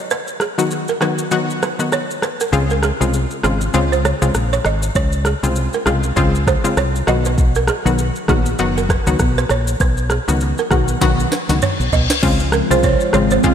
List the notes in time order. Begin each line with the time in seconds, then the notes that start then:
0.11 B4, shaker
0.28 shaker
0.40 G#4, cross-stick, shaker
0.58 D#3 F#3 B3 F#4, shaker
0.71 shaker
0.88 A#4, shaker
1.01 D#3 F#3 B3 F#4 B4, cross-stick, shaker
1.18 shaker
1.31 D#3 F#3 B3 F#4, shaker
1.50 shaker
1.63 B4, cross-stick, shaker
1.79 D#3 F#3 B3 F#4, shaker
1.92 C#5, cross-stick, shaker
2.11 shaker
2.22 B4, cross-stick, shaker
2.40 A#4, shaker
2.52 C#2 C#3 G#3 C4 F4, shaker
2.70 A#4, shaker
2.83 G#4, cross-stick, shaker
3.00 C2 C#3 G#3 C4 F4, shaker
3.14 shaker
3.31 shaker
3.43 G#1 C#3 G#3 C4 F4 G#4, cross-stick, shaker
3.61 shaker
3.74 C#2 C#3 G#3 C4 F4, shaker
3.92 C5, shaker
4.05 C#5, cross-stick, shaker
4.22 C2 C#3 G#3 C4 F4, shaker
4.34 A#1, cross-stick, shaker
4.53 C#5, shaker
4.65 G#1 D#5, cross-stick, shaker
4.83 shaker
4.95 C#2 C#5, kick, shaker
5.12 shaker
5.25 G#4, cross-stick, shaker
5.43 C2 C#3 G#3 C4 F4, shaker
5.56 shaker
5.73 A#4, shaker
5.86 C2 C#3 G#3 C4 F4 G#4, cross-stick, shaker
6.03 shaker
6.16 C#2 C#3 G#3 C4 F4, kick, shaker
6.35 shaker
6.47 C5, kick, cross-stick, shaker
6.64 C#3 G#3 C4 F4, shaker
6.77 C2 C#5, cross-stick, shaker
6.96 shaker
7.07 B1 D#3 F#3 B3 F#4 D#5, cross-stick, shaker
7.25 B4, shaker
7.38 kick, shaker
7.55 A#4, shaker
7.67 G#4, cross-stick, shaker
7.85 B1 D#3 F#3 B3 F#4, shaker
7.98 shaker
8.16 shaker
8.28 A#1 D#3 F#3 B3 F#4 G#4, kick, cross-stick, shaker
8.46 shaker
8.59 F#1 D#3 F#3 B3 F#4, shaker
8.78 A#4, shaker
8.89 B4, kick, cross-stick, shaker
9.07 C#2 D#3 F#3 B3 F#4, shaker
9.19 B1, kick, cross-stick, shaker
9.38 B4, shaker
9.49 A#1 C#5, cross-stick, shaker
9.67 shaker
9.80 B1 B4, kick, shaker
9.97 shaker
10.10 G#4, cross-stick, shaker
10.28 C#2 D#3 F#3 B3 F#4, shaker
10.41 shaker
10.58 A#4, shaker
10.71 B1 D#3 F#3 B3 F#4 G#4, kick, cross-stick, shaker
10.88 shaker
11.01 B1 D#3 F#3 B3 F#4, kick, snare, reverse cymbal, shaker
11.20 shaker
11.32 B4, snare, shaker
11.49 C#2 D#3 F#3 B3 F#4, snare, shaker
11.62 C#5, mid tom, shaker
11.80 B1, shaker
11.92 B1 D#5, floor tom, shaker
12.10 B4, snare, shaker
12.23 C#2 C#3 F3 G#3 C4 F4, kick, crash, shaker
12.40 shaker
12.52 A#4, cross-stick, shaker
12.70 C2 C#3 G#3 C4 F4 C5, shaker
12.83 C#5, kick, shaker
13.00 shaker
13.13 G#1 C#3 G#3 C4 F4 C#5, cross-stick, shaker
13.31 C5, shaker
13.43 C#2 C#3 G#3 C4 F4, kick, shaker